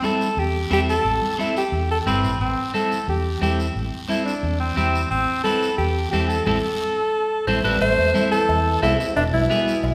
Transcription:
0.02 clean electric guitar C4 E4 A4, alto saxophone A4, high conga, short guiro
0.21 short guiro
0.37 fingered electric bass E2, alto saxophone G4, long guiro
0.70 fingered electric bass E2, clean electric guitar C4 E4 A4, alto saxophone G4, high conga, short guiro
0.89 alto saxophone A4, short guiro
1.05 fingered electric bass A1, long guiro
1.22 high conga
1.38 clean electric guitar C4 E4 A4, alto saxophone E4, high conga, short guiro
1.57 alto saxophone G4, short guiro
1.72 fingered electric bass E2, long guiro
1.91 alto saxophone A4
2.06 fingered electric bass G1, alto saxophone C4, clean electric guitar C4 E4 B4, high conga, short guiro
2.24 fingered electric bass A1, short guiro
2.40 fingered electric bass A1, alto saxophone C4, long guiro
2.74 clean electric guitar C4 E4 A4, alto saxophone A4, high conga, short guiro
2.92 short guiro
3.08 fingered electric bass E2, alto saxophone G4, long guiro
3.41 fingered electric bass E2, clean electric guitar C4 E4 A4, alto saxophone G4, high conga, short guiro
3.60 short guiro
3.76 fingered electric bass A1, long guiro
4.08 clean electric guitar C4 E4 A4, alto saxophone E4, high conga, short guiro
4.26 alto saxophone D4, short guiro
4.43 fingered electric bass E2, long guiro
4.60 alto saxophone C4
4.76 fingered electric bass E2, clean electric guitar C4 E4 G4, alto saxophone C4, high conga, short guiro
4.95 short guiro
5.11 fingered electric bass A1, alto saxophone C4, long guiro
5.44 clean electric guitar C4 E4 B4, alto saxophone A4, high conga, short guiro
5.63 short guiro
5.78 fingered electric bass E2, alto saxophone G4, long guiro
6.11 fingered electric bass E2, clean electric guitar C4 E4 A4, alto saxophone G4, high conga, short guiro
6.29 alto saxophone A4, short guiro
6.45 fingered electric bass A1, clean electric guitar C4 E4 A4, alto saxophone A4, high conga, long guiro
7.47 fingered electric bass A1, trombone A3, clean electric guitar C4 E4 A4, alto saxophone C5, high conga, long guiro
7.64 fingered electric bass A1, trombone G3, clean electric guitar C4 E4 A4, alto saxophone B4, high conga, long guiro
7.81 fingered electric bass A1, trombone A3, alto saxophone C5, cowbell, long guiro
7.98 fingered electric bass E2
8.14 clean electric guitar C4 E4 A4, high conga, short guiro
8.32 trombone E3, alto saxophone A4, short guiro
8.49 fingered electric bass E2, cowbell, long guiro
8.82 fingered electric bass C2, trombone C3, clean electric guitar C4 E4 A4, alto saxophone E4, high conga, low timbale, short guiro
8.99 trombone C3, alto saxophone E4, short guiro
9.16 fingered electric bass E1, trombone B2, alto saxophone D4, cowbell, long guiro
9.33 fingered electric bass B1, trombone B2, alto saxophone E4, high conga
9.50 clean electric guitar B3 E4 G#4, high conga, short guiro
9.68 short guiro
9.84 fingered electric bass B1, cowbell, long guiro

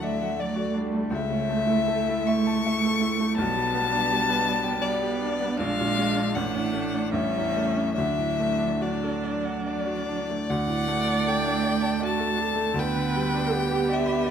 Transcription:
Already playing: grand piano D2 A2 A3 D4 F#4 A4, cello F#3, viola A3
0.02 grand piano D5, violin E5
0.21 grand piano F#5
0.37 cello F#3, viola A3, grand piano D5, violin D5
0.56 grand piano F#4
0.73 cello G3, grand piano D4
0.92 grand piano A3
1.10 grand piano C#2, cello A3, viola A3, violin E5
1.30 grand piano C#3
1.49 grand piano A3
1.67 grand piano E4
1.87 grand piano A4
2.09 grand piano E4
2.27 grand piano E5, violin C#6
2.47 grand piano A5
2.66 grand piano E5
2.85 grand piano A4
3.01 grand piano E4
3.20 grand piano A3
3.36 grand piano B1, cello G3, viola B3, violin A5
3.56 grand piano B2
3.74 grand piano B3
3.92 grand piano D4
4.11 grand piano G4
4.29 grand piano B4
4.46 grand piano D5
4.64 grand piano G5
4.81 cello G3, viola B3, violin D5, grand piano D5
5.01 grand piano G4
5.21 grand piano D4
5.40 grand piano B3
5.57 grand piano A#1, cello G#3, viola D4, violin F5
5.81 grand piano A#2
5.98 grand piano G#3
6.16 grand piano D4
6.34 grand piano A1, cello A3, viola D4, violin F#5
6.56 grand piano A2
6.73 grand piano A3
6.95 grand piano D4
7.12 grand piano A1, cello G3, viola C#4, violin E5
7.37 grand piano E2
7.57 grand piano A3
7.77 grand piano C#4
7.94 grand piano D2, cello F#3, viola D4, violin E5
8.18 grand piano A2
8.40 grand piano A3
8.59 grand piano D4
8.79 cello F#3, viola D4, grand piano F#4, violin D5
9.03 grand piano A4
9.24 grand piano D5
9.45 grand piano F#5
9.65 violin D5, grand piano D5
9.86 grand piano F#4
10.09 grand piano D4
10.30 grand piano A3
10.48 grand piano D2, cello A3, viola D5, violin F#5
10.67 grand piano A2
10.87 grand piano A3
11.07 grand piano D4
11.27 grand piano A4, violin G5
11.45 grand piano D4
11.64 grand piano D5
11.82 grand piano A5
12.00 viola F#4, grand piano D5
12.05 violin A5
12.20 grand piano A4
12.37 grand piano D4, viola A4
12.55 grand piano A3
12.74 grand piano D2
12.78 cello B3, viola B4, violin G5
12.96 grand piano D3
13.15 grand piano G3
13.34 grand piano D4
13.52 viola G4, grand piano B4
13.71 grand piano G4
13.89 grand piano D5, violin E5
14.06 grand piano B5
14.26 grand piano D5

